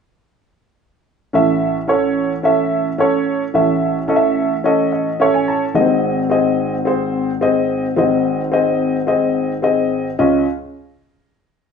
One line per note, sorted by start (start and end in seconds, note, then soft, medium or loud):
1.33 3.51 A1 medium
1.33 3.51 A2 medium
1.33 1.77 C#4 medium
1.33 1.77 A4 medium
1.33 1.78 E5 medium
1.88 2.32 C#4 medium
1.88 2.32 A4 medium
1.88 2.32 C#5 medium
2.43 2.87 C#4 medium
2.43 2.87 A4 medium
2.43 2.88 E5 medium
2.98 3.42 C#4 medium
2.98 3.43 A4 medium
2.98 3.43 C#5 medium
3.54 5.72 A1 medium
3.54 5.72 A2 medium
3.54 3.98 C#4 medium
3.54 3.98 A4 medium
3.54 3.98 E5 medium
4.08 4.52 C#4 medium
4.08 4.53 A4 medium
4.08 4.16 D#5 medium
4.16 4.56 E5 medium
4.64 5.08 C#4 medium
4.64 5.09 A4 medium
4.64 4.91 D#5 medium
4.92 5.19 D#5 medium
5.20 5.63 C#4 medium
5.20 5.64 A4 medium
5.20 5.64 C#5 medium
5.20 5.34 E5 medium
5.34 5.47 G#5 medium
5.48 5.74 A5 medium
5.74 7.93 G#1 medium
5.74 7.93 G#2 medium
5.74 5.82 A#3 medium
5.74 6.19 G#4 medium
5.74 6.19 D#5 medium
5.81 6.22 C4 medium
6.30 6.74 C4 medium
6.30 6.74 G#4 medium
6.30 6.75 D#5 medium
6.85 7.29 C4 medium
6.85 7.30 G#4 medium
6.85 7.30 C5 medium
7.41 7.85 C4 medium
7.41 7.85 G#4 medium
7.41 7.86 D#5 medium
7.96 10.15 G#1 medium
7.96 10.15 G#2 medium
7.96 8.40 C4 medium
7.96 8.41 G#4 medium
7.96 8.41 D#5 medium
8.52 8.96 C4 medium
8.52 8.96 G#4 medium
8.52 8.96 D#5 medium
9.07 9.51 C4 medium
9.07 9.51 G#4 medium
9.07 9.51 D#5 medium
9.62 10.06 C4 medium
9.62 10.07 G#4 medium
9.62 10.07 D#5 medium
10.19 10.45 C#2 medium
10.19 10.45 C#4 medium
10.19 10.45 F4 medium
10.19 10.45 D#5 medium